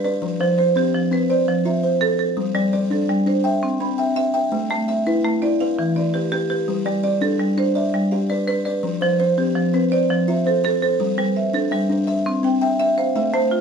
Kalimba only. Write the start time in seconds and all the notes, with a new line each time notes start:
Already playing: B4
0.05 D5
0.22 F3
0.40 C5
0.58 C5
0.76 C4
1.11 C4
1.30 C5
1.65 F4
1.83 C5
2.02 A4
2.37 G3
2.55 D5
2.73 D5
2.90 D4
3.26 D4
3.44 G5
3.80 C4
3.98 G5
4.16 E5
4.34 G5
4.52 A3
4.70 E5
4.88 E5
5.07 E4
5.42 E4
5.61 B4
5.96 E3
6.14 B4
6.32 G4
6.50 B4
6.68 G3
6.86 D5
7.03 D5
7.21 D4
7.57 D4
7.75 D5
8.12 G4
8.30 D5
8.48 B4
8.66 D5
8.83 F3
9.01 C5
9.20 C5
9.38 C4
9.74 C4
9.92 C5
10.28 F4
10.46 C5
10.64 A4
10.82 C5
11.00 G3
11.18 B4
11.53 D4
11.71 E5
11.89 D4
12.07 E5
12.43 C4
12.62 G5
12.79 E5
12.97 F5
13.16 A3
13.34 C5